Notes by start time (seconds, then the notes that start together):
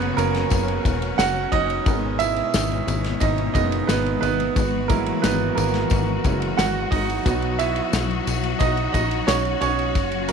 Already playing: F#1 C#3 F#3 A#3 B3 C#4 F#4 A#4 B4 C#5
0.02 ride
0.17 F#1 F#3 A#3 C#4 A#4, ride, tambourine
0.34 snare, ride
0.50 F#1, kick, ride, tambourine
0.68 ride
0.85 E1, kick, ride, tambourine
1.02 ride
1.18 F#1 F#4 F#5, snare, ride, tambourine
1.52 F#1 D#4 D#5, kick, ride
1.70 ride
1.86 G#1 B2 G#3 B3 A#4, kick, ride, tambourine
2.19 E4 E5, ride, tambourine
2.36 ride
2.54 G#1, snare, ride, tambourine
2.72 ride
2.87 G#1, ride, tambourine
3.04 snare, ride
3.20 G#1 D#4 D#5, kick, ride, tambourine
3.38 ride
3.54 F#1 G#3 A#3 B3 D#4 D#5, kick, ride, tambourine
3.72 ride
3.87 G#1 B3 B4, snare, ride, tambourine
4.06 ride
4.21 G#1 B3 B4, ride, tambourine
4.40 ride
4.56 G#1 E3 F#4, kick, ride, tambourine
4.88 F#3 G#3 A#3 E4 A#4, kick, ride, tambourine
5.06 ride
5.22 G#1 B3 B4, snare, ride, tambourine
5.55 G#1 A#3 A#4, ride, tambourine
5.74 snare, ride
5.90 G#1, kick, ride, tambourine
6.24 F#1 F#3 G#3 E4, kick, ride, tambourine
6.42 ride
6.57 G#1 F#4 F#5, snare, ride, tambourine
6.91 G#1 D#4 D#5, kick, open hi-hat, ride
7.10 ride
7.25 B1 F#3 B3 F#4, kick, hi-hat pedal, ride, tambourine
7.42 ride
7.59 E4 E5, ride, tambourine
7.76 ride
7.93 B1, snare, ride, tambourine
8.11 ride
8.27 B1, ride, tambourine
8.43 ride
8.59 B1 D#4 D#5, kick, ride, tambourine
8.77 ride
8.93 A#1 D#4 D#5, kick, ride, tambourine
9.11 ride
9.27 B1 C#4 C#5, snare, ride, tambourine
9.45 ride
9.61 B1 C#4 C#5, ride, tambourine
9.79 ride
9.95 F#1 C#3 F#3 C#4, kick, ride, tambourine
10.12 ride
10.28 F#3 A#4, ride, tambourine